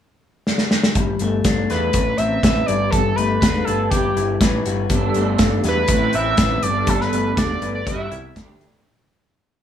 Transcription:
0.47 snare
0.58 snare
0.71 snare
0.83 snare
0.95 picked electric bass G1, clean electric guitar G3, kick, closed hi-hat
1.19 picked electric bass G1, clean electric guitar A3, closed hi-hat
1.44 picked electric bass G1, clean electric guitar D4, kick, snare, closed hi-hat
1.70 picked electric bass E2, analog synth lead B4, clean electric guitar B4, snare, closed hi-hat
1.93 picked electric bass A1, clean electric guitar A2, kick, closed hi-hat
2.17 picked electric bass A1, clean electric guitar C4, analog synth lead E5, closed hi-hat
2.43 picked electric bass A1, clean electric guitar B4, kick, snare, closed hi-hat
2.66 picked electric bass G1, clean electric guitar G3, analog synth lead D5, closed hi-hat
2.90 picked electric bass G1, clean electric guitar G3, analog synth lead A4, kick, closed hi-hat
3.16 picked electric bass G1, clean electric guitar A3, analog synth lead B4, closed hi-hat
3.40 picked electric bass E1, clean electric guitar D4, analog synth lead B4, kick, snare, closed hi-hat
3.65 picked electric bass G1, analog synth lead A4, clean electric guitar B4, closed hi-hat
3.90 picked electric bass G1, clean electric guitar G3, analog synth lead G4, kick, closed hi-hat
4.16 picked electric bass G1, clean electric guitar E4, closed hi-hat
4.41 picked electric bass A1, clean electric guitar B4, kick, snare, closed hi-hat
4.66 picked electric bass G1, clean electric guitar F#4, closed hi-hat
4.90 picked electric bass G1, clean electric guitar G3 B3 D4 A4, kick, closed hi-hat
5.14 picked electric bass G1, clean electric guitar A3, closed hi-hat
5.38 picked electric bass G1, clean electric guitar D4, kick, snare, closed hi-hat
5.64 picked electric bass E2, clean electric guitar B4, snare, closed hi-hat
5.68 analog synth lead B4
5.88 picked electric bass A1, clean electric guitar A2 C4 E4, kick, closed hi-hat
5.92 clean electric guitar B4
6.13 picked electric bass A1, clean electric guitar C4, analog synth lead E5, closed hi-hat
6.37 picked electric bass A1, clean electric guitar B4, kick, snare, closed hi-hat
6.62 picked electric bass G1, clean electric guitar G3 B3 D4 A4, analog synth lead D5, closed hi-hat
6.87 picked electric bass G1, clean electric guitar G3, analog synth lead A4, kick, closed hi-hat
7.01 analog synth lead B4, snare
7.13 picked electric bass G1, clean electric guitar A3, closed hi-hat
7.37 picked electric bass E1, clean electric guitar D4, analog synth lead D5, kick, snare, closed hi-hat
7.62 picked electric bass G1, clean electric guitar B4, closed hi-hat
7.75 analog synth lead D5
7.86 picked electric bass G1, clean electric guitar G3 B3 E4 F#4, analog synth lead E5, kick, closed hi-hat
8.11 picked electric bass C2, clean electric guitar E4, closed hi-hat
8.36 picked electric bass D2, clean electric guitar D3 A3 D4 G4, kick, snare, closed hi-hat
8.60 picked electric bass D2, clean electric guitar D4, closed hi-hat

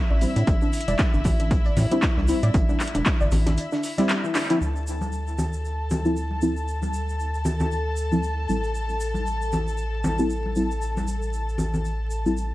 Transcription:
Already playing: violin section E4 E5
0.10 analog synth bass A1, synth pluck D5
0.21 synth stab G3 C4 E4, closed hi-hat, open hi-hat, shaker
0.36 analog synth bass A2, synth pluck D4, closed hi-hat, shaker
0.47 analog synth bass A1, kick, closed hi-hat, shaker
0.62 synth pluck D4, shaker
0.73 closed hi-hat, open hi-hat, shaker
0.81 closed hi-hat
0.88 analog synth bass E1, synth pluck D5, closed hi-hat, high conga, shaker
0.99 kick, snare, clap, closed hi-hat, shaker
1.14 analog synth bass G1, synth pluck D4, shaker
1.24 analog synth bass A1, kick, closed hi-hat, open hi-hat, low conga, shaker
1.40 synth pluck D4, closed hi-hat, shaker
1.51 kick, closed hi-hat, shaker
1.65 synth pluck D5, closed hi-hat
1.77 analog synth bass A2, snare, closed hi-hat, open hi-hat, high conga, low conga, shaker
1.91 synth stab G3 C4 E4, synth pluck D4, closed hi-hat, shaker
2.02 kick, snare, clap, closed hi-hat, shaker
2.17 analog synth bass C2, synth pluck D4, snare, high conga
2.28 synth stab G3 C4 E4, closed hi-hat, open hi-hat, shaker
2.43 analog synth bass A2, synth pluck D5, closed hi-hat, shaker
2.54 analog synth bass A1, kick, closed hi-hat, shaker
2.69 synth pluck D4, high conga, shaker
2.80 clap, closed hi-hat, open hi-hat, shaker
2.87 closed hi-hat
2.95 analog synth bass E1, synth pluck D4, closed hi-hat, high conga, shaker
3.06 kick, snare, clap, closed hi-hat, shaker
3.21 analog synth bass G1, synth pluck D5, shaker
3.31 analog synth bass A1, closed hi-hat, open hi-hat, low conga, shaker
3.46 synth pluck D4, snare, closed hi-hat, low conga, shaker
3.58 closed hi-hat, shaker
3.72 synth pluck D4, snare, shaker
3.83 snare, closed hi-hat, open hi-hat, shaker
3.98 synth stab G3 C4 E4, synth pluck D5, snare, closed hi-hat, high conga, shaker
4.09 snare, clap, closed hi-hat, shaker
4.24 synth pluck E4, shaker
4.35 synth pluck D4, snare, clap, closed hi-hat, open hi-hat, shaker
4.50 synth stab F3 C4 E4, synth pluck D4, closed hi-hat, shaker
4.61 analog synth bass D2, violin section A4 A5, crash, shaker
4.76 shaker
4.87 shaker
5.01 high conga, shaker
5.12 shaker
5.27 shaker
5.38 low conga, shaker
5.53 shaker
5.65 shaker
5.91 high conga, low conga, shaker
6.05 synth stab F3 C4 E4, shaker
6.16 shaker
6.31 high conga
6.42 synth stab F3 C4 E4, shaker
6.57 shaker
6.68 shaker
6.83 high conga, shaker
6.94 shaker
7.09 shaker
7.20 shaker
7.35 shaker
7.45 low conga, shaker
7.60 low conga, shaker
7.72 shaker
7.97 shaker
8.12 synth stab F3 C4 E4, high conga, shaker
8.23 shaker
8.49 analog synth bass A1, synth stab G3 C4 E4, shaker
8.64 shaker
8.75 shaker
8.89 shaker
9.01 shaker
9.14 high conga, shaker
9.27 shaker
9.42 shaker
9.52 low conga, shaker
9.68 shaker
9.77 shaker
10.04 high conga, low conga, shaker
10.19 synth stab G3 C4 E4, shaker
10.30 shaker
10.46 high conga
10.56 synth stab G3 C4 E4, shaker
10.71 shaker
10.82 shaker
10.97 high conga, shaker
11.08 shaker
11.22 shaker
11.33 shaker
11.49 shaker
11.58 low conga, shaker
11.74 low conga, shaker
11.85 shaker
12.11 shaker
12.26 synth stab G3 C4 E4, high conga, shaker
12.37 shaker

